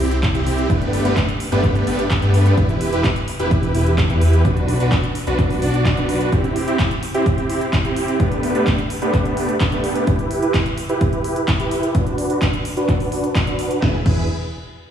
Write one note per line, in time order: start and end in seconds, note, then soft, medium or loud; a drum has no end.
0.00 0.32 C2 loud
0.00 0.15 C4 medium
0.00 0.15 E4 medium
0.00 0.15 G4 medium
0.11 closed hi-hat soft
0.23 kick loud
0.23 clap loud
0.23 closed hi-hat medium
0.35 0.68 C2 loud
0.35 0.67 C4 medium
0.35 0.67 E4 medium
0.35 0.67 G4 medium
0.35 closed hi-hat soft
0.46 open hi-hat loud
0.58 closed hi-hat soft
0.70 1.03 G1 loud
0.70 1.02 A3 medium
0.70 1.02 B3 medium
0.70 1.02 D4 medium
0.70 1.02 G4 medium
0.70 1.02 B4 medium
0.70 kick loud
0.70 closed hi-hat medium
0.82 closed hi-hat soft
0.93 open hi-hat loud
1.05 1.18 G1 loud
1.05 1.20 A3 medium
1.05 1.20 B3 medium
1.05 1.20 D4 medium
1.05 1.20 G4 medium
1.05 1.20 B4 medium
1.05 closed hi-hat soft
1.17 kick loud
1.17 clap loud
1.17 closed hi-hat medium
1.29 closed hi-hat soft
1.40 open hi-hat loud
1.52 1.85 G1 loud
1.52 1.84 A3 medium
1.52 1.84 B3 medium
1.52 1.84 D4 medium
1.52 1.84 G4 medium
1.52 1.84 B4 loud
1.52 closed hi-hat soft
1.64 kick loud
1.64 clap soft
1.64 closed hi-hat medium
1.75 closed hi-hat soft
1.87 2.20 G1 loud
1.87 2.03 A3 medium
1.87 2.03 B3 medium
1.87 2.03 D4 medium
1.87 2.03 G4 medium
1.87 2.03 B4 medium
1.87 open hi-hat loud
1.99 closed hi-hat soft
2.11 kick loud
2.11 clap loud
2.11 closed hi-hat medium
2.22 2.55 G2 loud
2.22 2.55 A3 medium
2.22 2.55 B3 medium
2.22 2.55 D4 medium
2.22 2.55 G4 medium
2.22 2.55 B4 medium
2.22 closed hi-hat soft
2.34 open hi-hat loud
2.46 closed hi-hat soft
2.57 2.90 E1 medium
2.57 2.90 E4 medium
2.57 2.90 G4 medium
2.57 2.90 B4 medium
2.57 kick loud
2.57 closed hi-hat medium
2.69 closed hi-hat soft
2.81 open hi-hat loud
2.93 3.06 E1 loud
2.93 3.08 E4 medium
2.93 3.08 G4 medium
2.93 3.08 B4 loud
2.93 closed hi-hat soft
3.04 kick loud
3.04 clap loud
3.04 closed hi-hat medium
3.16 closed hi-hat soft
3.28 open hi-hat loud
3.40 3.72 E1 loud
3.40 3.72 E4 medium
3.40 3.72 G4 medium
3.40 3.72 B4 loud
3.40 closed hi-hat soft
3.51 kick loud
3.51 closed hi-hat medium
3.63 closed hi-hat soft
3.75 4.07 E1 medium
3.75 3.90 E4 medium
3.75 3.90 G4 medium
3.75 3.90 B4 medium
3.75 open hi-hat loud
3.86 closed hi-hat soft
3.98 kick loud
3.98 clap loud
3.98 closed hi-hat medium
4.10 4.43 E2 loud
4.10 4.42 E4 medium
4.10 4.42 G4 medium
4.10 4.42 B4 medium
4.10 closed hi-hat soft
4.21 open hi-hat loud
4.33 closed hi-hat soft
4.45 4.78 B1 loud
4.45 4.77 D4 medium
4.45 4.77 F#4 medium
4.45 4.77 B4 medium
4.45 kick loud
4.45 closed hi-hat medium
4.57 closed hi-hat soft
4.68 open hi-hat loud
4.80 4.93 B1 medium
4.80 4.95 D4 medium
4.80 4.95 F#4 medium
4.80 4.95 B4 loud
4.80 closed hi-hat soft
4.92 kick loud
4.92 clap loud
4.92 closed hi-hat medium
5.04 closed hi-hat soft
5.15 open hi-hat loud
5.27 5.60 B1 loud
5.27 5.59 D4 medium
5.27 5.59 F#4 medium
5.27 5.59 B4 loud
5.27 closed hi-hat soft
5.39 kick loud
5.39 clap soft
5.39 closed hi-hat medium
5.50 open hi-hat medium
5.62 5.95 B1 medium
5.62 5.94 D4 loud
5.62 5.94 F#4 medium
5.62 5.94 D5 loud
5.62 open hi-hat loud
5.74 closed hi-hat soft
5.86 kick loud
5.86 clap loud
5.86 closed hi-hat medium
5.97 6.30 B1 medium
5.97 6.30 D4 medium
5.97 6.30 F#4 medium
5.97 6.30 B4 medium
5.97 closed hi-hat soft
6.09 open hi-hat loud
6.21 closed hi-hat soft
6.32 6.65 C4 medium
6.32 6.65 E4 medium
6.32 6.65 G4 medium
6.32 kick loud
6.32 closed hi-hat medium
6.44 closed hi-hat soft
6.56 open hi-hat loud
6.68 6.83 C4 medium
6.68 6.83 E4 medium
6.68 6.83 G4 loud
6.68 closed hi-hat soft
6.79 kick loud
6.79 clap loud
6.79 closed hi-hat medium
6.91 closed hi-hat soft
7.03 open hi-hat loud
7.14 7.47 C4 medium
7.14 7.47 E4 medium
7.14 7.47 G4 loud
7.14 closed hi-hat soft
7.26 kick loud
7.26 closed hi-hat medium
7.38 closed hi-hat soft
7.50 7.65 C4 medium
7.50 7.65 E4 medium
7.50 7.65 G4 medium
7.50 open hi-hat loud
7.61 closed hi-hat soft
7.73 kick loud
7.73 clap loud
7.73 closed hi-hat medium
7.85 8.17 C4 medium
7.85 8.17 E4 medium
7.85 8.17 G4 medium
7.85 closed hi-hat soft
7.96 open hi-hat loud
8.08 closed hi-hat soft
8.20 8.52 A3 medium
8.20 8.52 B3 medium
8.20 8.52 D4 medium
8.20 8.52 G4 medium
8.20 8.52 B4 medium
8.20 kick loud
8.20 closed hi-hat medium
8.32 closed hi-hat soft
8.43 open hi-hat loud
8.55 8.70 A3 medium
8.55 8.70 B3 medium
8.55 8.70 D4 medium
8.55 8.70 G4 medium
8.55 8.70 B4 loud
8.55 closed hi-hat soft
8.67 kick loud
8.67 clap loud
8.67 closed hi-hat medium
8.78 closed hi-hat soft
8.90 open hi-hat loud
9.02 9.34 A3 medium
9.02 9.34 B3 medium
9.02 9.34 D4 medium
9.02 9.34 G4 medium
9.02 9.34 B4 loud
9.02 closed hi-hat soft
9.14 kick loud
9.14 clap soft
9.14 closed hi-hat medium
9.25 closed hi-hat soft
9.37 9.53 A3 medium
9.37 9.53 B3 medium
9.37 9.53 D4 medium
9.37 9.52 G4 medium
9.37 9.53 B4 medium
9.37 open hi-hat loud
9.49 closed hi-hat soft
9.60 kick loud
9.60 clap loud
9.60 closed hi-hat medium
9.72 10.05 A3 medium
9.72 10.05 B3 medium
9.72 10.05 D4 medium
9.72 10.05 G4 medium
9.72 10.05 B4 medium
9.72 closed hi-hat soft
9.84 open hi-hat loud
9.96 closed hi-hat soft
10.07 10.40 E4 medium
10.07 10.40 G4 medium
10.07 10.40 B4 medium
10.07 kick loud
10.07 closed hi-hat medium
10.19 closed hi-hat soft
10.31 open hi-hat loud
10.42 10.58 E4 medium
10.42 10.58 G4 medium
10.42 10.58 B4 loud
10.42 closed hi-hat soft
10.54 kick loud
10.54 clap loud
10.54 closed hi-hat medium
10.66 closed hi-hat soft
10.78 open hi-hat loud
10.89 11.22 E4 medium
10.89 11.22 G4 medium
10.89 11.22 B4 loud
10.89 closed hi-hat soft
11.01 kick loud
11.01 closed hi-hat medium
11.13 closed hi-hat soft
11.24 11.40 E4 medium
11.24 11.40 G4 medium
11.24 11.40 B4 medium
11.24 open hi-hat medium
11.36 closed hi-hat soft
11.48 kick loud
11.48 clap loud
11.48 closed hi-hat medium
11.60 11.92 E4 medium
11.60 11.92 G4 medium
11.60 11.92 B4 medium
11.60 closed hi-hat soft
11.71 open hi-hat loud
11.83 closed hi-hat soft
11.95 12.27 D4 medium
11.95 12.27 F#4 medium
11.95 12.27 B4 medium
11.95 kick loud
11.95 closed hi-hat medium
12.06 closed hi-hat soft
12.18 open hi-hat loud
12.30 12.45 D4 medium
12.30 12.45 F#4 medium
12.30 12.45 B4 loud
12.30 closed hi-hat soft
12.42 kick loud
12.42 clap loud
12.42 closed hi-hat medium
12.53 closed hi-hat soft
12.65 open hi-hat loud
12.77 13.09 D4 medium
12.77 13.09 F#4 medium
12.77 13.09 B4 loud
12.77 closed hi-hat soft
12.89 kick loud
12.89 clap soft
12.89 closed hi-hat medium
13.00 open hi-hat medium
13.12 13.28 D4 medium
13.12 13.27 F#4 medium
13.12 13.27 B4 medium
13.12 open hi-hat loud
13.24 closed hi-hat soft
13.35 kick loud
13.35 clap loud
13.35 closed hi-hat medium
13.47 13.80 D4 medium
13.47 13.80 F#4 medium
13.47 13.80 B4 medium
13.47 closed hi-hat soft
13.59 open hi-hat loud
13.71 closed hi-hat soft
13.82 13.96 E1 loud
13.82 13.95 E4 medium
13.82 13.95 G#4 medium
13.82 13.95 B4 medium
13.82 kick loud
13.82 snare medium
14.06 14.28 E1 medium
14.06 14.23 E4 medium
14.06 14.23 G#4 medium
14.06 14.23 B4 loud
14.06 kick loud
14.06 crash medium